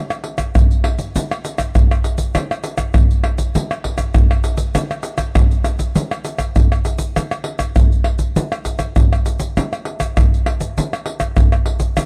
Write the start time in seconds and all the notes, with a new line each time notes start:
0.10 pandeiro, tamborim, shaker
0.24 pandeiro
0.38 pandeiro, tamborim, shaker, surdo
0.55 pandeiro, tamborim, shaker, surdo
0.71 pandeiro, shaker
0.84 pandeiro, tamborim
0.99 pandeiro, shaker, surdo
1.16 pandeiro, shaker, surdo
1.31 pandeiro, tamborim, shaker
1.45 pandeiro, shaker
1.58 pandeiro, tamborim, shaker, surdo
1.75 pandeiro, tamborim, shaker, surdo
1.91 pandeiro, tamborim, shaker
2.04 pandeiro, shaker
2.18 pandeiro, shaker, surdo
2.35 pandeiro, tamborim, shaker, surdo
2.51 pandeiro, tamborim, shaker
2.64 pandeiro, shaker
2.78 pandeiro, tamborim, shaker, surdo
2.94 pandeiro, tamborim, shaker, surdo
3.11 pandeiro, shaker
3.24 pandeiro, tamborim
3.38 pandeiro, shaker, surdo
3.55 pandeiro, shaker, surdo
3.71 pandeiro, tamborim, shaker
3.84 pandeiro, surdo
3.98 pandeiro, tamborim, shaker, surdo
4.14 pandeiro, tamborim, shaker, surdo
4.31 pandeiro, tamborim, shaker
4.44 pandeiro, shaker
4.57 pandeiro, shaker, surdo
4.75 pandeiro, tamborim, shaker, surdo
4.91 pandeiro, tamborim, shaker
5.03 pandeiro, shaker
5.18 pandeiro, tamborim, shaker, surdo
5.35 pandeiro, tamborim, shaker, surdo
5.51 pandeiro, shaker
5.64 pandeiro, tamborim, shaker
5.79 pandeiro, shaker, surdo
5.96 pandeiro, shaker, surdo
6.11 pandeiro, tamborim, shaker
6.25 pandeiro, shaker
6.38 pandeiro, tamborim, shaker, surdo
6.56 pandeiro, tamborim, shaker, surdo
6.72 pandeiro, tamborim, shaker
6.85 pandeiro, shaker
6.98 pandeiro, shaker, surdo
7.16 pandeiro, tamborim, shaker, surdo
7.31 pandeiro, tamborim, shaker
7.44 pandeiro
7.59 pandeiro, tamborim, shaker, surdo
7.76 pandeiro, tamborim, shaker, surdo
7.92 pandeiro, shaker
8.04 pandeiro, tamborim
8.19 pandeiro, shaker, surdo
8.36 pandeiro, shaker, surdo
8.52 pandeiro, tamborim, shaker
8.65 pandeiro, shaker, surdo
8.79 pandeiro, tamborim, shaker, surdo
8.96 pandeiro, tamborim, shaker, surdo
9.13 pandeiro, tamborim, shaker
9.26 pandeiro, shaker
9.40 pandeiro, shaker, surdo
9.57 pandeiro, tamborim, shaker, surdo
9.73 pandeiro, tamborim, shaker
9.85 pandeiro
10.00 pandeiro, tamborim, shaker, surdo
10.17 pandeiro, tamborim, shaker, surdo
10.34 pandeiro, shaker
10.46 pandeiro, tamborim
10.60 pandeiro, shaker, surdo
10.78 pandeiro, shaker, surdo
10.93 pandeiro, tamborim, shaker
11.06 pandeiro
11.20 pandeiro, tamborim, shaker, surdo
11.37 pandeiro, tamborim, shaker, surdo
11.52 pandeiro, tamborim, shaker
11.66 pandeiro
11.80 pandeiro, shaker, surdo
11.97 pandeiro, tamborim, shaker, surdo